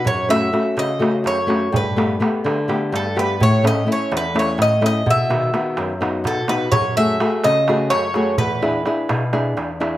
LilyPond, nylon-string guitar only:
\new Staff \with { instrumentName = "Nylon-string guitar" } { \time 7/8 \key fis \dorian \tempo 4 = 126 fis,8 <a cis' fis'>8 <a cis' fis'>8 cis8 <a cis' fis'>8 fis,8 <a cis' fis'>8 | g,8 <a b g'>8 <a b g'>8 d8 <a b g'>8 g,8 <a b g'>8 | a,8 <a cis' e'>8 <a cis' e'>8 e,8 <a cis' e'>8 a,8 <a cis' e'>8 | b,8 <dis b fis'>8 <dis b fis'>8 fis,8 <b dis' fis'>8 b,8 <b dis' fis'>8 |
fis,8 <a fis' gis'>8 <a fis' gis'>8 cis8 <a fis' gis'>8 fis,8 <a fis' gis'>8 | e,8 <d' e' gis'>8 <d' e' gis'>8 b,8 <d' e' gis'>8 e,8 <d' e' gis'>8 | }